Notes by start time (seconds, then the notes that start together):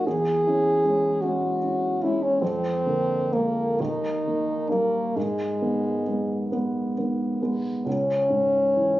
0.07 E2 G#4
0.46 E3 C#4
0.84 G#3 C#4
1.22 G#3 C#4 F#4
1.62 E3 C#4
2.03 G#3 C#4 E4
2.23 C#4
2.42 F2 C4
2.86 D3 A#3
3.32 G#3 A#3
3.80 D#2 D#4
4.27 D#3 A#3
4.70 G3 A#3
5.16 G#2 G#3
5.61 D#3 B3
6.07 G#3 B3
6.51 G#3 B3
6.98 D#3 B3
7.42 G#3 B3
7.86 C#2 C#4
8.30 G#2
8.76 E3